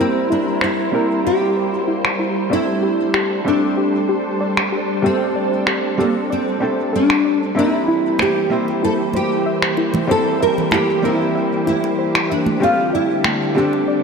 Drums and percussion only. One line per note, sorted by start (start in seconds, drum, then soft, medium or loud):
0.61 finger snap medium
2.05 finger snap medium
3.14 finger snap medium
4.57 finger snap medium
5.67 finger snap medium
7.10 finger snap medium
8.19 finger snap medium
8.19 high conga medium
8.68 high bongo soft
9.13 high conga medium
9.62 finger snap medium
9.77 high bongo soft
9.94 high conga medium
9.94 low conga medium
10.58 low conga medium
10.71 finger snap medium
10.71 high conga medium
11.67 high bongo soft
11.67 high conga medium
11.84 high bongo soft
12.15 finger snap medium
12.15 high bongo soft
12.46 high conga medium
13.24 finger snap medium
13.24 high conga medium
13.73 high bongo soft